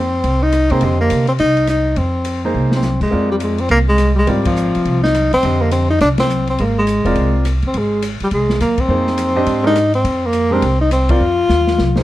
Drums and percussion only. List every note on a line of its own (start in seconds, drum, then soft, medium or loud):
0.24 ride medium
0.52 cross-stick medium
0.52 hi-hat pedal medium
0.52 ride medium
0.70 ride soft
0.81 ride medium
1.10 hi-hat pedal medium
1.10 ride medium
1.27 ride soft
1.39 ride medium
1.57 ride soft
1.67 cross-stick medium
1.67 hi-hat pedal soft
1.67 ride medium
1.96 ride soft
2.25 hi-hat pedal medium
2.25 ride medium
2.72 snare medium
2.82 snare soft
2.82 hi-hat pedal medium
3.01 kick medium
3.01 crash medium
3.40 hi-hat pedal soft
3.40 ride medium
3.58 ride soft
3.69 ride medium
3.98 cross-stick medium
3.98 hi-hat pedal medium
3.98 ride medium
4.27 ride medium
4.45 kick medium
4.45 ride medium
4.56 hi-hat pedal medium
4.75 ride soft
4.85 ride soft
5.04 snare soft
5.14 cross-stick medium
5.14 hi-hat pedal soft
5.14 ride medium
5.33 ride soft
5.43 ride medium
5.71 hi-hat pedal medium
5.71 ride medium
6.00 snare soft
6.00 ride medium
6.18 snare medium
6.18 ride medium
6.29 hi-hat pedal medium
6.47 ride soft
6.58 ride medium
6.87 hi-hat pedal medium
6.87 ride medium
7.05 ride soft
7.15 ride medium
7.45 cross-stick medium
7.45 hi-hat pedal medium
7.45 ride medium
7.62 ride soft
7.74 ride medium
8.02 hi-hat pedal medium
8.02 ride medium
8.20 ride soft
8.31 ride medium
8.50 snare soft
8.60 cross-stick medium
8.60 hi-hat pedal medium
8.60 ride medium
8.78 kick medium
8.78 ride medium
9.07 snare soft
9.18 hi-hat pedal medium
9.18 ride medium
9.46 ride medium
9.76 cross-stick medium
9.76 hi-hat pedal medium
9.76 ride medium
9.94 ride soft
10.05 ride medium
10.33 hi-hat pedal medium
10.33 ride medium
10.62 ride medium
10.91 cross-stick medium
10.91 hi-hat pedal medium
10.91 ride medium
11.09 kick medium
11.09 ride medium
11.49 snare soft
11.49 hi-hat pedal medium
11.67 snare medium
11.78 snare medium
11.96 snare medium